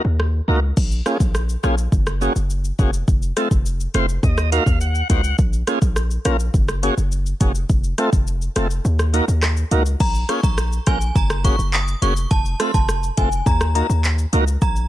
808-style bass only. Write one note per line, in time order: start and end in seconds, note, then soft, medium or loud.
0.05 0.41 D#2 medium
0.48 0.72 C#2 medium
0.77 1.01 A#1 loud
1.20 1.56 A#1 medium
1.64 1.88 A#1 medium
1.92 2.29 F#1 loud
2.36 2.72 F#1 medium
2.79 3.03 F1 medium
3.08 3.32 F1 loud
3.51 3.87 F1 medium
3.94 4.19 F1 loud
4.23 4.59 D#2 loud
4.66 5.03 D#2 medium
5.10 5.34 C#2 medium
5.39 5.63 A#1 loud
5.82 6.18 A#1 medium
6.25 6.49 A#1 medium
6.54 6.90 F#1 loud
6.97 7.34 F#1 medium
7.41 7.65 F1 medium
7.70 7.94 F1 loud
8.13 8.49 F1 medium
8.56 8.80 F1 loud
8.85 9.21 D#2 loud
9.28 9.64 D#2 medium
9.71 9.95 C#2 medium
10.00 10.24 A#1 loud
10.43 10.80 A#1 medium
10.87 11.11 A#1 loud
11.15 11.52 F#1 loud
11.59 11.95 F#1 medium
12.02 12.26 F1 medium
12.31 12.55 F1 loud
12.74 13.10 F1 medium
13.18 13.42 F1 loud
13.46 13.82 D#2 loud
13.89 14.26 D#2 loud
14.33 14.57 C#2 loud
14.62 14.86 A#1 loud